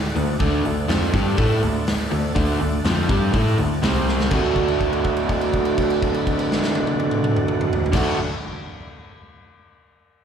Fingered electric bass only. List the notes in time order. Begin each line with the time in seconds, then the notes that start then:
0.15 D2
0.40 D2
0.89 F2
1.14 G2
1.39 A2
1.62 D2
2.12 D2
2.36 D2
2.62 D2
2.85 F2
3.09 G2
3.34 A2
3.58 D2
3.82 C2
4.32 D2
7.93 D2